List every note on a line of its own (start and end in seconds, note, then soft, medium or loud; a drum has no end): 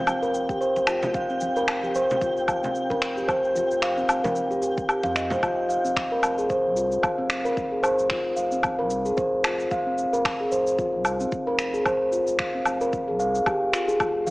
0.00 5.44 G5 medium
0.07 cabasa soft
0.07 low woodblock medium
0.22 0.54 F1 medium
0.22 0.48 A#4 loud
0.22 cabasa soft
0.34 cabasa medium
0.49 0.60 G4 medium
0.49 kick loud
0.49 cabasa soft
0.61 0.86 C5 medium
0.61 cabasa soft
0.76 1.07 F1 medium
0.76 muted conga soft
0.76 cabasa soft
0.87 1.02 F4 medium
0.87 finger snap medium
0.87 cabasa medium
0.87 low woodblock medium
1.02 muted conga soft
1.02 low conga medium
1.02 cabasa soft
1.14 1.48 F1 loud
1.14 1.28 F5 medium
1.14 kick loud
1.14 cabasa soft
1.29 1.36 C4 medium
1.29 cabasa soft
1.41 muted conga soft
1.41 high conga soft
1.41 cabasa medium
1.56 1.88 F1 medium
1.56 1.82 A#4 loud
1.56 cabasa soft
1.68 finger snap medium
1.68 cabasa soft
1.68 low woodblock medium
1.83 1.94 G4 medium
1.83 high conga soft
1.83 cabasa soft
1.95 2.04 F1 medium
1.95 2.21 C5 loud
1.95 cabasa medium
2.10 low conga medium
2.10 cabasa soft
2.21 2.36 F4 medium
2.21 kick loud
2.21 muted conga soft
2.21 cabasa soft
2.37 2.68 F1 medium
2.37 cabasa soft
2.48 2.62 F5 medium
2.48 kick medium
2.48 cabasa medium
2.48 low woodblock medium
2.63 2.70 C4 medium
2.63 low conga medium
2.63 cabasa soft
2.75 cabasa soft
2.90 3.22 F1 medium
2.90 3.16 A#4 loud
2.90 kick medium
2.90 muted conga medium
2.90 cabasa soft
3.02 finger snap medium
3.02 cabasa medium
3.17 3.28 G4 medium
3.17 cabasa soft
3.28 3.62 F1 medium
3.28 3.54 C5 loud
3.28 kick loud
3.28 cabasa soft
3.28 low woodblock medium
3.44 cabasa soft
3.55 3.70 F4 medium
3.55 muted conga soft
3.55 high conga soft
3.55 cabasa medium
3.71 4.03 F1 medium
3.71 cabasa soft
3.82 3.96 F5 medium
3.82 finger snap medium
3.82 cabasa soft
3.98 4.04 C4 medium
3.98 cabasa soft
4.09 4.19 F1 medium
4.09 cabasa medium
4.09 low woodblock medium
4.24 4.49 A#4 medium
4.24 high conga medium
4.24 low conga medium
4.24 cabasa soft
4.36 cabasa soft
4.50 4.83 F1 medium
4.50 4.61 G4 medium
4.50 cabasa soft
4.62 4.71 G4 medium
4.62 cabasa medium
4.78 kick loud
4.78 cabasa soft
4.88 5.03 G4 medium
4.88 cabasa soft
4.88 low woodblock medium
5.03 5.36 F2 medium
5.03 5.15 F5 medium
5.03 muted conga medium
5.03 cabasa soft
5.15 5.30 D#5 medium
5.15 finger snap medium
5.15 cabasa medium
5.30 5.38 C5 medium
5.30 muted conga soft
5.30 low conga medium
5.30 cabasa soft
5.42 5.76 F1 loud
5.42 5.57 F4 medium
5.42 kick loud
5.42 cabasa soft
5.42 low woodblock medium
5.69 5.83 F5 medium
5.69 cabasa medium
5.85 6.17 F1 medium
5.85 5.91 C4 medium
5.85 cabasa soft
5.96 finger snap medium
5.96 kick loud
5.96 cabasa soft
6.12 6.37 A#4 loud
6.23 6.67 F1 medium
6.23 cabasa medium
6.23 low woodblock medium
6.38 6.49 G#4 medium
6.38 cabasa soft
6.50 6.75 C5 loud
6.50 kick loud
6.50 cabasa soft
6.66 6.97 C2 medium
6.76 6.91 F4 medium
6.76 cabasa medium
6.92 cabasa soft
7.03 7.17 F5 medium
7.03 kick loud
7.03 cabasa soft
7.03 low woodblock medium
7.18 7.50 F1 medium
7.18 7.25 C4 medium
7.30 finger snap medium
7.30 cabasa medium
7.45 7.71 A#4 loud
7.45 cabasa soft
7.57 7.90 F1 loud
7.57 kick loud
7.57 cabasa soft
7.72 7.83 G#4 medium
7.83 8.09 C5 loud
7.83 cabasa medium
7.83 low woodblock medium
7.99 8.31 F1 medium
7.99 cabasa soft
8.10 8.25 F4 medium
8.10 finger snap medium
8.10 kick loud
8.10 cabasa soft
8.36 8.81 F1 loud
8.36 8.51 F5 medium
8.36 cabasa medium
8.52 8.59 C4 medium
8.52 cabasa soft
8.63 kick loud
8.63 cabasa soft
8.63 low woodblock medium
8.79 9.11 C2 medium
8.79 9.04 A#4 loud
8.90 cabasa medium
9.05 9.17 G#4 medium
9.05 cabasa soft
9.17 9.43 C5 loud
9.17 kick loud
9.17 cabasa soft
9.33 9.65 F1 medium
9.44 9.59 F4 medium
9.44 finger snap medium
9.44 cabasa medium
9.44 low woodblock medium
9.60 cabasa soft
9.71 10.04 F1 medium
9.71 9.85 F5 medium
9.71 kick loud
9.71 cabasa soft
9.86 9.93 C4 medium
9.98 cabasa medium
10.13 10.45 F1 medium
10.13 10.39 A#4 medium
10.13 cabasa soft
10.25 finger snap medium
10.25 kick loud
10.25 cabasa soft
10.25 low woodblock medium
10.40 10.51 G#4 medium
10.52 10.95 F1 loud
10.52 10.77 C5 loud
10.52 cabasa medium
10.67 cabasa soft
10.79 10.93 F4 medium
10.79 kick loud
10.79 cabasa soft
10.94 11.25 C2 medium
11.05 11.19 F5 medium
11.05 cabasa medium
11.05 low woodblock medium
11.20 11.27 C4 medium
11.20 cabasa soft
11.32 kick loud
11.32 cabasa soft
11.47 11.79 F1 medium
11.47 11.73 A#4 loud
11.59 finger snap medium
11.59 cabasa medium
11.74 11.85 G#4 medium
11.74 cabasa medium
11.85 12.19 F1 loud
11.85 12.11 C5 loud
11.85 kick loud
11.85 cabasa soft
11.85 low woodblock medium
12.12 12.27 F4 medium
12.12 cabasa medium
12.27 12.59 F1 medium
12.27 cabasa soft
12.39 finger snap medium
12.39 kick loud
12.39 cabasa soft
12.54 12.61 C4 medium
12.65 13.10 F1 loud
12.65 cabasa medium
12.65 low woodblock medium
12.81 13.07 A#4 loud
12.81 cabasa soft
12.93 kick loud
12.93 cabasa soft
13.08 13.40 C2 medium
13.08 13.19 G#4 medium
13.19 13.34 F5 medium
13.19 cabasa medium
13.35 cabasa soft
13.46 13.61 G4 medium
13.46 kick loud
13.46 cabasa soft
13.46 low woodblock medium
13.62 13.69 F1 medium
13.73 13.88 F4 medium
13.73 finger snap medium
13.73 cabasa medium
13.88 13.99 G#4 medium
13.88 cabasa soft
14.00 14.30 F1 loud
14.00 14.14 F4 medium
14.00 14.30 C5 medium
14.00 kick loud
14.00 cabasa soft
14.00 low woodblock medium
14.26 14.30 F5 medium
14.26 muted conga soft
14.26 high conga soft
14.26 cabasa medium